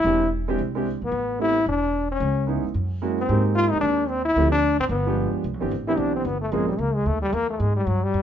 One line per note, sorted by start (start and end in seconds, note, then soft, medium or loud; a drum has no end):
0.00 0.29 E4 medium
0.04 0.56 E1 medium
0.04 0.20 G#3 medium
0.04 0.20 C4 medium
0.04 0.21 D4 medium
0.04 0.21 E4 medium
0.04 0.21 G4 medium
0.48 0.58 G#3 medium
0.48 0.58 C4 medium
0.48 0.58 D4 medium
0.48 0.59 E4 medium
0.48 0.59 G4 medium
0.59 0.99 C2 medium
0.75 0.85 G#3 medium
0.75 0.85 C4 medium
0.75 0.85 D4 medium
0.75 0.86 E4 medium
0.75 0.86 G4 medium
1.02 1.11 A#1 medium
1.02 1.39 B3 medium
1.12 1.64 A1 medium
1.39 1.54 A3 medium
1.39 1.55 B3 medium
1.39 1.55 C4 medium
1.39 1.55 E4 medium
1.39 1.66 E4 medium
1.39 1.56 G4 medium
1.66 2.18 E1 medium
1.66 2.08 D4 medium
2.12 2.46 C#4 medium
2.20 2.61 C#2 medium
2.47 2.62 G#3 medium
2.47 2.63 B3 medium
2.47 2.63 C#4 medium
2.47 2.63 D#4 medium
2.47 2.63 E4 medium
2.64 muted upright bass stroke soft
2.74 3.26 F#2 medium
3.02 3.17 G#3 medium
3.02 3.17 A#3 medium
3.02 3.17 C#4 medium
3.02 3.17 E4 medium
3.02 3.18 F#4 medium
3.20 3.44 C4 medium
3.28 3.69 G#2 medium
3.28 4.03 G#3 medium
3.28 4.03 A#3 medium
3.28 4.04 C4 medium
3.28 4.04 D#4 medium
3.28 4.04 G4 medium
3.55 3.72 F4 loud
3.71 3.82 D#2 medium
3.71 3.80 D#4 loud
3.81 4.34 D#2 medium
3.81 4.10 D4 medium
4.09 4.24 C4 medium
4.25 4.51 E4 medium
4.36 4.77 D2 medium
4.36 4.51 F3 medium
4.36 4.52 A3 medium
4.36 4.52 C4 medium
4.36 4.52 E4 medium
4.36 4.52 G4 medium
4.52 4.78 D4 loud
4.79 4.89 G#1 medium
4.79 4.85 C4 medium
4.89 5.30 G1 medium
4.89 5.31 B3 medium
5.06 5.42 F3 medium
5.06 5.43 G#3 medium
5.06 5.43 B3 medium
5.06 5.43 D4 medium
5.06 5.43 G4 medium
5.33 muted upright bass stroke soft
5.44 5.53 C2 medium
5.53 5.62 B1 medium
5.60 5.71 G1 medium
5.60 5.70 E3 medium
5.60 5.70 B3 medium
5.60 5.70 C4 medium
5.60 5.71 D4 medium
5.60 5.71 G4 medium
5.71 5.97 A1 medium
5.87 6.23 E3 medium
5.87 6.23 B3 medium
5.87 6.23 C4 medium
5.87 6.24 D4 medium
5.87 6.00 E4 medium
5.87 6.24 G4 medium
5.97 6.24 B1 medium
5.97 6.15 D4 medium
6.16 6.27 C4 medium
6.25 6.51 G1 medium
6.25 6.41 B3 medium
6.42 6.53 A3 medium
6.52 6.78 A#1 medium
6.52 6.67 F3 medium
6.52 6.68 G#3 medium
6.52 6.67 A#3 medium
6.52 6.68 C4 medium
6.52 6.68 C#4 medium
6.52 6.68 G#4 medium
6.69 6.81 G3 medium
6.78 7.05 C#2 medium
6.78 6.96 A#3 medium
6.95 7.08 G#3 medium
7.06 7.32 D#2 medium
7.06 7.21 A3 medium
7.22 7.35 G3 medium
7.32 7.59 E2 medium
7.32 7.49 A#3 medium
7.50 7.62 A3 medium
7.60 7.86 G#2 medium
7.60 7.76 G#3 medium
7.77 7.89 G3 medium
7.87 8.13 G2 medium
7.87 8.05 F#3 medium
8.04 8.22 G3 medium
8.14 8.22 F2 medium